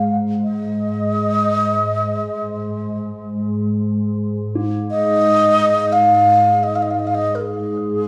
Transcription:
Already playing: G#2 G#4 F5
0.43 D#5
4.55 D#4
4.91 D#5
5.92 F5
6.63 D#5
6.76 F5
6.83 D#5
6.91 F5
7.00 D#5
7.07 F5
7.15 D#5
7.35 A#4
7.41 G#4

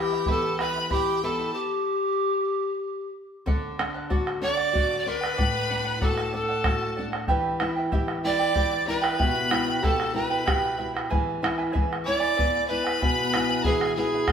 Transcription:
Already playing: E3 E4 G5
0.00 G4
0.10 E4 E5 B5, bombo rim
0.26 B3 E4 G4 A4 E5 G5 A5 B5, bombo low
0.59 E4 B4 E5 G5 B5, bombo rim
0.76 E4 E5 B5
0.90 E4 G4 E5 G5 B5, bombo rim, bombo low
1.23 B3 E4 G4 A4 E5 G5 A5 B5
1.39 E4 E5 B5
1.53 G4
3.46 D3 A4 D5 F#5, bombo rim, bombo low
3.79 D4 A4 D5 F#5, bombo rim
3.94 D5 F#5
4.10 F#4 A4 D5 F#5, bombo rim, bombo low
4.27 bombo rim
4.42 D4 A4 D5 F#5 D6, bombo rim
4.57 D5 F#5
4.73 F#4 A4 D5 F#5, bombo low
4.91 bombo rim
4.99 D5 D6
5.05 D4 A4 A#4 D5 F#5 B5
5.19 B4 D5 F#5
5.24 bombo rim
5.37 A2 A4 D5 F#5, bombo rim, bombo low
5.68 D4 A4 D5 F#5
5.85 D5 F#5
6.00 F#4 A4 D5 F#5 A5, bombo rim, bombo low
6.17 bombo rim
6.32 D4 A4 D5 F#5 A5, bombo rim
6.48 D5 F#5
6.64 F#4 A4 D5 F#5, bombo rim, bombo low
6.82 bombo rim
6.96 D4 A4 D5 F#5
7.12 D5 F#5, bombo rim
7.28 E3 E4 G4 B4 E5 G5, bombo rim, bombo low
7.60 E4 B4 E5 G5, bombo rim
7.76 E4 B4 G5
7.92 E4 G4 B4 E5 G5, bombo rim, bombo low
8.08 bombo rim
8.23 E4 B4 D5 E5 G5 D6, bombo rim
8.39 E4 B4 G5
8.55 E4 G4 B4 E5 G5, bombo low
8.72 bombo rim
8.86 E4 B4 E5 G5 B5
9.01 E4 B4 G5, bombo rim
9.18 B2 E4 G4 B4 E5 G5, bombo rim, bombo low
9.50 E4 B4 E5 G5, bombo rim
9.66 E4 B4 G5, bombo rim
9.83 E4 G4 A4 B4 E5 G5 A5, bombo rim, bombo low
10.00 bombo rim
10.14 E4 B4 E5 G5 B5
10.30 E4 B4 G5
10.45 E4 G4 B4 E5 G5, bombo rim, bombo low
10.65 bombo rim
10.77 E4 B4 E5 G5
10.94 E4 B4 G5, bombo rim
11.10 E3 E4 G#4 B4 E5 G#5, bombo rim, bombo low
11.42 E4 B4 E5 G#5, bombo rim
11.58 E4 B4 G#5
11.72 E3 E4 G#4 B4 E5 G#5, bombo rim, bombo low
11.93 bombo rim
12.04 E4 B4 D5 E5 G#5 D6
12.08 bombo rim
12.20 E4 B4 G#5
12.36 B3 E4 G#4 B4 E5 G#5, bombo low
12.55 bombo rim
12.67 E4 B4 E5 G#5 B5
12.84 E4 B4 G#5, bombo rim
13.00 B2 E4 G#4 B4 E5 G#5, bombo rim, bombo low
13.32 E4 B4 E5 G#5, bombo rim
13.49 E4 B4 G#5
13.64 E3 E4 G#4 B4 E5 G#5, bombo rim, bombo low
13.81 bombo rim
13.95 E4 G#4 B4 E5 G#5, bombo rim
14.14 E4 B4 G#5
14.28 B3 G#4, bombo rim, bombo low

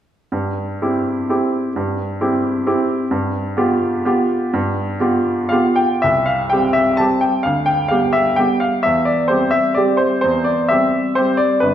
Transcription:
0.32 G2
0.82 C4 E4 G4
1.29 C4 E4 G4
1.76 G2
2.21 C4 E4 G4
2.67 C4 E4 G4
3.11 G2
3.57 B3 F4 G4
4.05 B3 F4 G4
4.53 G2
5.00 B3 F4 G4
5.49 B3 F4 G4 F5
5.76 G5
6.02 C2 E5
6.26 F5
6.50 G3 C4 G4 G5
6.73 E5
6.97 G3 C4 G4 A5
7.21 G5
7.43 D2 F5
7.66 G5
7.88 G3 B3 G4 F5
8.13 E5
8.36 G3 B3 G4 G5
8.60 F5
8.83 E2 E5
9.05 D5
9.28 G3 C4 G4 C5
9.51 E5
9.74 G3 C4 G4 D5
9.97 C5
10.21 E2 C5
10.44 D5
10.68 G3 C4 G4 E5
11.15 G3 C4 G4 C5
11.37 D5
11.60 G1 B4

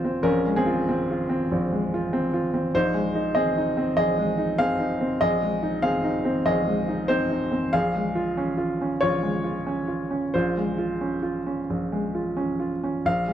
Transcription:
Already playing: A#1 G#3 C4 F4 C5
0.05 C4
0.23 A#1 C#4 A#4
0.47 G#3
0.56 C4 G#4
0.66 F4
0.89 C4
1.11 F4
1.29 C4
1.52 A#1
1.72 G#3
1.94 F4
2.13 C4
2.34 F4
2.54 C4
2.74 A#1 D#4 C5
2.94 G#3
3.15 D#4
3.35 C4 G#4 D#5
3.57 D#4
3.77 C4
3.97 A#1 G#4 D#5
4.18 G#3
4.38 D#4
4.58 C4 G#4 F5
4.80 D#4
5.01 C4
5.21 A#1 G#4 D#5
5.42 G#3
5.63 D#4
5.82 C4 G#4 F5
6.04 D#4
6.25 C4
6.46 A#1 G#4 D#5
6.67 G#3
6.88 D#4
7.08 C4 D#4 C5
7.30 D#4
7.52 C4
7.73 A#1 G#4 F5
7.95 G#3
8.15 F4
8.37 C#4
8.57 F4
8.81 C#4
9.01 A#1 F4 C#5
9.23 G#3
9.44 F4
9.66 C#4
9.88 F4
10.11 C#4
10.34 A#1 F4 C5
10.57 G#3
10.78 F4
11.01 C#4
11.23 F4
11.46 C#4
11.70 A#1
11.92 G#3
12.15 F4
12.37 C#4
12.60 F4
12.83 C#4
13.06 A#1 F5
13.28 G#3

